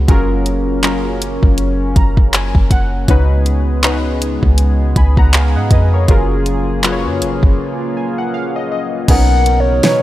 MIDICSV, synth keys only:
0, 0, Header, 1, 2, 480
1, 0, Start_track
1, 0, Key_signature, 6, "major"
1, 0, Tempo, 750000
1, 53, Time_signature, 4, 2, 24, 8
1, 6415, End_track
2, 0, Start_track
2, 0, Title_t, "Synth keys"
2, 0, Program_c, 0, 88
2, 0, Control_c, 0, 64, 127
2, 51, Note_on_c, 0, 54, 83
2, 55, Note_on_c, 0, 61, 73
2, 59, Note_on_c, 0, 65, 75
2, 62, Control_c, 0, 64, 0
2, 63, Note_on_c, 0, 68, 75
2, 66, Note_on_c, 0, 70, 84
2, 186, Control_c, 0, 64, 127
2, 477, Note_off_c, 0, 54, 0
2, 479, Note_off_c, 0, 61, 0
2, 481, Note_off_c, 0, 65, 0
2, 483, Note_off_c, 0, 68, 0
2, 485, Note_off_c, 0, 70, 0
2, 531, Note_on_c, 0, 54, 75
2, 535, Note_on_c, 0, 61, 71
2, 539, Note_on_c, 0, 65, 73
2, 543, Note_on_c, 0, 68, 69
2, 547, Note_on_c, 0, 70, 83
2, 1258, Note_on_c, 0, 82, 67
2, 1379, Note_off_c, 0, 54, 0
2, 1381, Note_off_c, 0, 61, 0
2, 1383, Note_off_c, 0, 65, 0
2, 1385, Note_off_c, 0, 68, 0
2, 1387, Note_off_c, 0, 70, 0
2, 1479, Note_off_c, 0, 82, 0
2, 1499, Note_on_c, 0, 80, 76
2, 1720, Note_off_c, 0, 80, 0
2, 1739, Note_on_c, 0, 78, 70
2, 1960, Note_off_c, 0, 78, 0
2, 1972, Note_on_c, 0, 49, 80
2, 1976, Note_on_c, 0, 61, 71
2, 1979, Note_on_c, 0, 63, 74
2, 1983, Control_c, 0, 64, 0
2, 1984, Note_on_c, 0, 66, 74
2, 1987, Note_on_c, 0, 71, 88
2, 2106, Control_c, 0, 64, 127
2, 2398, Note_off_c, 0, 49, 0
2, 2399, Note_off_c, 0, 61, 0
2, 2401, Note_off_c, 0, 63, 0
2, 2404, Note_off_c, 0, 66, 0
2, 2405, Note_off_c, 0, 71, 0
2, 2451, Note_on_c, 0, 49, 78
2, 2454, Note_on_c, 0, 61, 69
2, 2458, Note_on_c, 0, 63, 73
2, 2462, Note_on_c, 0, 66, 71
2, 2466, Note_on_c, 0, 71, 88
2, 3179, Note_off_c, 0, 71, 0
2, 3181, Note_on_c, 0, 83, 64
2, 3183, Note_on_c, 0, 80, 51
2, 3299, Note_off_c, 0, 49, 0
2, 3301, Note_off_c, 0, 61, 0
2, 3303, Note_off_c, 0, 63, 0
2, 3304, Note_off_c, 0, 66, 0
2, 3309, Note_off_c, 0, 83, 0
2, 3311, Note_off_c, 0, 80, 0
2, 3318, Note_on_c, 0, 82, 70
2, 3322, Note_on_c, 0, 78, 59
2, 3411, Note_off_c, 0, 82, 0
2, 3413, Note_off_c, 0, 78, 0
2, 3419, Note_on_c, 0, 80, 72
2, 3423, Note_on_c, 0, 77, 61
2, 3548, Note_off_c, 0, 80, 0
2, 3550, Note_off_c, 0, 77, 0
2, 3559, Note_on_c, 0, 78, 67
2, 3563, Note_on_c, 0, 75, 58
2, 3652, Note_off_c, 0, 78, 0
2, 3654, Note_off_c, 0, 75, 0
2, 3661, Note_on_c, 0, 75, 71
2, 3665, Note_on_c, 0, 71, 57
2, 3790, Note_off_c, 0, 75, 0
2, 3792, Note_off_c, 0, 71, 0
2, 3799, Note_on_c, 0, 73, 59
2, 3804, Note_on_c, 0, 70, 54
2, 3893, Note_on_c, 0, 54, 83
2, 3898, Note_on_c, 0, 61, 74
2, 3901, Note_off_c, 0, 70, 0
2, 3901, Note_on_c, 0, 65, 74
2, 3902, Control_c, 0, 64, 0
2, 3905, Note_on_c, 0, 68, 78
2, 3909, Note_on_c, 0, 70, 87
2, 4000, Control_c, 0, 64, 127
2, 4024, Note_off_c, 0, 73, 0
2, 4318, Note_off_c, 0, 54, 0
2, 4321, Note_off_c, 0, 61, 0
2, 4322, Note_off_c, 0, 65, 0
2, 4324, Note_off_c, 0, 68, 0
2, 4326, Note_off_c, 0, 70, 0
2, 4372, Note_on_c, 0, 54, 78
2, 4376, Note_on_c, 0, 61, 69
2, 4381, Note_on_c, 0, 65, 73
2, 4384, Note_on_c, 0, 68, 72
2, 4388, Note_on_c, 0, 71, 70
2, 4429, Note_off_c, 0, 71, 0
2, 4430, Note_on_c, 0, 73, 88
2, 5100, Note_on_c, 0, 80, 66
2, 5220, Note_off_c, 0, 54, 0
2, 5222, Note_off_c, 0, 61, 0
2, 5224, Note_off_c, 0, 65, 0
2, 5226, Note_off_c, 0, 68, 0
2, 5226, Note_off_c, 0, 80, 0
2, 5237, Note_on_c, 0, 78, 70
2, 5249, Note_off_c, 0, 73, 0
2, 5328, Note_off_c, 0, 78, 0
2, 5337, Note_on_c, 0, 77, 74
2, 5465, Note_off_c, 0, 77, 0
2, 5478, Note_on_c, 0, 75, 69
2, 5569, Note_off_c, 0, 75, 0
2, 5579, Note_on_c, 0, 75, 69
2, 5799, Note_off_c, 0, 75, 0
2, 5810, Note_on_c, 0, 47, 73
2, 5815, Note_on_c, 0, 59, 65
2, 5819, Note_on_c, 0, 61, 69
2, 5821, Control_c, 0, 64, 0
2, 5823, Note_on_c, 0, 63, 68
2, 5827, Note_on_c, 0, 70, 80
2, 5932, Control_c, 0, 64, 127
2, 6237, Note_off_c, 0, 47, 0
2, 6239, Note_off_c, 0, 59, 0
2, 6241, Note_off_c, 0, 61, 0
2, 6243, Note_off_c, 0, 63, 0
2, 6245, Note_off_c, 0, 70, 0
2, 6290, Note_on_c, 0, 47, 72
2, 6293, Note_on_c, 0, 59, 67
2, 6297, Note_on_c, 0, 61, 69
2, 6302, Note_on_c, 0, 63, 69
2, 6306, Note_on_c, 0, 73, 81
2, 6415, Note_off_c, 0, 47, 0
2, 6415, Note_off_c, 0, 59, 0
2, 6415, Note_off_c, 0, 61, 0
2, 6415, Note_off_c, 0, 63, 0
2, 6415, Note_off_c, 0, 73, 0
2, 6415, End_track
0, 0, End_of_file